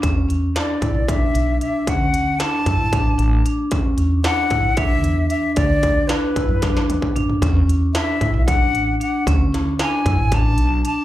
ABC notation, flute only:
X:1
M:7/8
L:1/8
Q:1/4=114
K:Emix
V:1 name="Flute"
z2 d2 e2 e | f2 a4 z | z2 f2 e2 e | d2 B4 z |
z2 e2 f2 f | z2 g2 a2 a |]